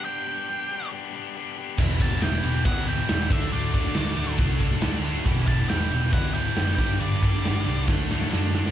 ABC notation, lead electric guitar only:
X:1
M:4/4
L:1/8
Q:1/4=138
K:Em
V:1 name="Lead electric guitar"
g4 z4 | z a g2 f g2 e | d4 z4 | z a g2 f g2 g |
d4 z4 |]